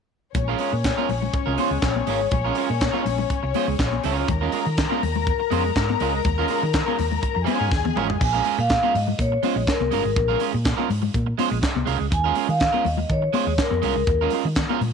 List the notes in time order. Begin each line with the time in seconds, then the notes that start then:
0.35 A#1 C#4 C#5, muted clean electric guitar stroke, kick, closed hi-hat, low conga
0.48 G#3 C#4 F4 A#4
0.58 G#3 C#4 F4 A#4, open hi-hat, muted conga
0.73 A#2, muted clean electric guitar stroke
0.84 muted clean electric guitar stroke, kick, snare, clap, closed hi-hat, muted conga
0.97 G#3 C#4 F4 A#4, high conga
1.09 A#1, muted clean electric guitar stroke, open hi-hat, muted conga, low conga
1.22 muted clean electric guitar stroke, low conga
1.33 muted clean electric guitar stroke, kick, closed hi-hat
1.46 C2 G#3 C#4 F4 A#4
1.58 G#3 C#4 F4 C5, open hi-hat, muted conga, high conga
1.71 C#2, muted clean electric guitar stroke
1.82 A#1, muted clean electric guitar stroke, kick, snare, clap, closed hi-hat
1.96 muted clean electric guitar stroke, high conga
2.07 G#1 G#3 C#4 F4 A#4, open hi-hat
2.21 muted clean electric guitar stroke
2.31 A#1, muted clean electric guitar stroke, kick, closed hi-hat, muted conga, low conga
2.44 G#3 C#4 F4 A#4
2.55 G#3 C#4 F4 A#4, open hi-hat
2.69 A#2, muted clean electric guitar stroke
2.81 muted clean electric guitar stroke, kick, snare, clap, closed hi-hat, muted conga
2.92 G#3 C#4 F4 A#4, high conga
3.05 A#1, muted clean electric guitar stroke, open hi-hat, low conga
3.18 muted clean electric guitar stroke, low conga
3.30 kick, closed hi-hat, muted conga
3.43 C2, muted clean electric guitar stroke
3.54 G#3 C#4 F4 C5, open hi-hat, muted conga, high conga
3.68 C#2, muted clean electric guitar stroke
3.79 A#1, muted clean electric guitar stroke, kick, snare, clap, closed hi-hat, muted conga
3.93 muted clean electric guitar stroke, high conga
4.04 C#2 G#3 C#4 F4 A#4, open hi-hat, muted conga
4.17 G#3 C#4 F4 A#4
4.28 D#2 A#4 A#5, muted clean electric guitar stroke, kick, closed hi-hat, low conga
4.41 G#3 C#4 F4 A#4
4.52 G#3 C#4 F4 A#4, open hi-hat, muted conga
4.65 D#3, muted clean electric guitar stroke
4.77 muted clean electric guitar stroke, kick, snare, clap, closed hi-hat
4.90 G#3 C#4 F4 A#4, high conga
5.02 D#2, muted clean electric guitar stroke, open hi-hat, low conga
5.15 muted clean electric guitar stroke, low conga
5.27 kick, closed hi-hat, muted conga
5.40 muted clean electric guitar stroke
5.51 F2 G#3 C#4 F4 C5, open hi-hat, muted conga, high conga
5.65 muted clean electric guitar stroke
5.76 G#2, muted clean electric guitar stroke, kick, snare, clap, closed hi-hat, muted conga
5.90 muted clean electric guitar stroke, high conga
6.00 C#2 G#3 C#4 F4 A#4, open hi-hat, muted conga
6.14 muted clean electric guitar stroke
6.25 D#2, muted clean electric guitar stroke, kick, closed hi-hat, muted conga, low conga
6.38 G#3 C#4 F4 A#4
6.48 G#3 C#4 F4 A#4, open hi-hat, muted conga
6.63 D#3, muted clean electric guitar stroke
6.73 muted clean electric guitar stroke, kick, snare, clap, closed hi-hat
6.86 G#3 C#4 F4 A#4, high conga
6.97 D#2, muted clean electric guitar stroke, open hi-hat, muted conga, low conga
7.10 muted clean electric guitar stroke, low conga
7.22 muted clean electric guitar stroke, kick, closed hi-hat
7.35 F2, muted clean electric guitar stroke
7.45 G#3 C#4 F4 G#4 C5 G#5, open hi-hat, muted conga, high conga
7.59 G#2 G#3 C#4 F4 A#4
7.70 D#2, muted clean electric guitar stroke, kick, snare
7.84 muted clean electric guitar stroke, high tom, high conga
7.96 G#1 G#3 C#4 F4 A#4, mid tom, muted conga
8.08 muted clean electric guitar stroke, floor tom
8.20 A#1 G#5, muted clean electric guitar stroke, kick, crash, muted conga
8.33 G#3 C#4 F4 A#4
8.44 G#3 C#4 F4 A#4, open hi-hat, muted conga
8.58 A#2 F5, muted clean electric guitar stroke
8.69 muted clean electric guitar stroke, kick, snare, clap, closed hi-hat, muted conga
8.83 G#3 C#4 F4 A#4, high conga
8.94 G#2 D#5, muted clean electric guitar stroke, open hi-hat, muted conga, low conga
9.07 muted clean electric guitar stroke, low conga
9.19 A#2 C#5, kick, closed hi-hat, muted conga
9.32 muted clean electric guitar stroke
9.43 G#3 C#4 F4 C5, open hi-hat, muted conga, high conga
9.56 A#1, muted clean electric guitar stroke
9.67 A#4, muted clean electric guitar stroke, kick, snare, clap, closed hi-hat, muted conga
9.80 C2, muted clean electric guitar stroke, high conga
9.91 G1 G#3 C#4 F4 A#4, open hi-hat, muted conga
10.04 G#1, muted clean electric guitar stroke
10.16 A#1, muted clean electric guitar stroke, kick, closed hi-hat, muted conga
10.28 G#3 C#4 F4 A#4
10.40 G#3 C#4 F4 A#4, open hi-hat, muted conga
10.53 A#2, muted clean electric guitar stroke
10.64 muted clean electric guitar stroke, kick, snare, clap, closed hi-hat
10.77 G#3 C#4 F4 A#4, high conga
10.89 G#2, muted clean electric guitar stroke, open hi-hat, muted conga, low conga
11.02 muted clean electric guitar stroke, low conga
11.14 A#2, kick, closed hi-hat, muted conga
11.26 muted clean electric guitar stroke
11.38 G#3 C#4 F4 C5, open hi-hat, muted conga, high conga
11.50 A#1, muted clean electric guitar stroke
11.62 muted clean electric guitar stroke, kick, snare, clap, closed hi-hat
11.74 C2, muted clean electric guitar stroke, high conga
11.86 C2 G#3 C#4 F4 A#4, open hi-hat, muted conga
11.99 C#2, muted clean electric guitar stroke
12.11 D#2 G#5, muted clean electric guitar stroke, kick, closed hi-hat
12.24 G#3 C#4 F4 A#4
12.35 G#3 C#4 F4 A#4, open hi-hat, muted conga
12.48 D#3 F5, muted clean electric guitar stroke
12.59 muted clean electric guitar stroke, kick, snare, clap, closed hi-hat, muted conga
12.73 G#3 C#4 F4 A#4, high conga
12.85 D#2 D#5, muted clean electric guitar stroke, open hi-hat, low conga
12.97 muted clean electric guitar stroke, low conga
13.10 D#3 C#5, kick, closed hi-hat
13.22 muted clean electric guitar stroke
13.33 G#3 C#4 F4 C5, open hi-hat, muted conga, high conga
13.47 D#2, muted clean electric guitar stroke
13.58 A#4, muted clean electric guitar stroke, kick, snare, clap, closed hi-hat, muted conga
13.70 F2, muted clean electric guitar stroke, high conga
13.82 C2 G#3 C#4 F4 A#4, open hi-hat
13.96 C#2, muted clean electric guitar stroke
14.07 D#2, muted clean electric guitar stroke, kick, closed hi-hat
14.21 G#3 C#4 F4 A#4
14.30 G#3 C#4 F4, open hi-hat, muted conga
14.35 A#4
14.45 D#3, muted clean electric guitar stroke
14.55 muted clean electric guitar stroke, kick, snare, clap, closed hi-hat, high conga
14.69 G#3 C#4 F4 A#4, high conga
14.81 A#2, muted clean electric guitar stroke, open hi-hat, muted conga, low conga